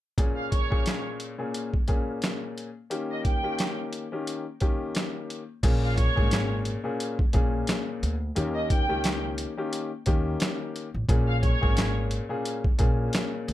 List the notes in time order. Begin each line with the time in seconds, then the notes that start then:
0.17 A#2 A#3 C#4 G#4, kick, closed hi-hat
0.36 F5
0.52 C#5, kick, closed hi-hat
0.70 A#2 A#3 C#4 G#4, kick
0.86 snare, clap, closed hi-hat
1.20 closed hi-hat
1.38 A#2 A#3 C#4 G#4
1.54 closed hi-hat
1.74 kick
1.88 A#2 A#3 C#4 G#4, kick, closed hi-hat
2.22 snare, clap, closed hi-hat
2.58 closed hi-hat
2.90 D#3 A#3 C#4 G4, closed hi-hat
3.11 D#5
3.25 G5, kick, closed hi-hat
3.43 D#3 A#3 C#4 G4
3.59 snare, clap, closed hi-hat
3.93 closed hi-hat
4.12 D#3 A#3 C#4 G4
4.27 closed hi-hat
4.60 D#3 A#3 C#4 G4, kick, closed hi-hat
4.95 snare, clap, closed hi-hat
5.30 closed hi-hat
5.63 A#1 A#2 A#3 C#4 G#4, kick, closed hi-hat, crash
5.83 F5
5.98 C#5, kick, closed hi-hat
6.15 G#1 A#2 A#3 C#4 G#4, kick
6.31 snare, clap, closed hi-hat
6.65 closed hi-hat
6.84 A#2 A#3 C#4 G#4
7.00 closed hi-hat
7.19 kick
7.33 A#1 A#2 A#3 C#4 G#4, kick, closed hi-hat
7.67 snare, clap, closed hi-hat
8.03 D2, closed hi-hat
8.35 D#2 D#3 A#3 C#4 G4, closed hi-hat
8.54 D#5
8.70 G5, kick, closed hi-hat
8.89 C#2 D#3 A#3 C#4 G4
9.04 snare, clap, closed hi-hat
9.38 closed hi-hat
9.57 D#3 A#3 C#4 G4
9.73 closed hi-hat
10.06 D#2 D#3 A#3 C#4 G4, kick, closed hi-hat
10.40 snare, clap, closed hi-hat
10.76 closed hi-hat
10.94 A1
11.08 A#1 A#2 A#3 C#4 G#4, kick, closed hi-hat
11.28 F5
11.43 C#5, kick, closed hi-hat
11.61 G#1 A#2 A#3 C#4 G#4, kick
11.77 snare, clap, closed hi-hat
12.11 closed hi-hat
12.29 A#2 A#3 C#4 G#4
12.45 closed hi-hat
12.64 kick
12.78 A#1 A#2 A#3 C#4 G#4, kick, closed hi-hat
13.13 snare, clap, closed hi-hat
13.48 D2, closed hi-hat